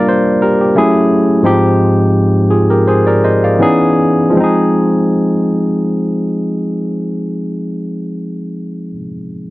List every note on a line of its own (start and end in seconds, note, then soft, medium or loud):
0.00 0.78 G3 medium
0.00 0.78 A#3 medium
0.00 0.78 D4 medium
0.00 0.79 F4 medium
0.00 0.42 A#4 medium
0.00 0.79 D5 medium
0.00 0.79 F5 medium
0.09 0.41 C5 medium
0.42 0.60 G4 medium
0.42 0.60 A#4 medium
0.61 0.93 G4 medium
0.75 1.32 F#3 medium
0.75 1.32 A3 medium
0.75 1.32 C#4 medium
0.75 1.33 E4 medium
0.75 1.33 G#4 medium
1.43 2.57 G#2 medium
1.43 2.58 F3 medium
1.43 2.58 G#3 medium
1.43 2.58 C4 medium
1.43 2.58 D#4 medium
1.43 2.51 G4 medium
2.50 2.70 F4 medium
2.50 2.69 G#4 medium
2.70 2.86 G4 soft
2.70 2.86 A#4 medium
2.87 3.07 G#4 medium
2.87 3.06 C5 medium
3.07 3.23 A#4 medium
3.07 3.23 D5 medium
3.24 3.43 C5 medium
3.24 3.43 D#5 medium
3.44 3.80 D5 medium
3.44 3.80 F5 medium
3.59 4.22 E3 medium
3.59 4.22 B3 medium
3.59 4.23 C#4 medium
3.59 4.23 D#4 medium
3.59 4.24 G#4 medium
4.30 8.90 F3 medium
4.30 8.92 G#3 medium
4.37 8.94 C4 medium
4.37 8.95 D#4 medium
4.44 8.97 G#4 medium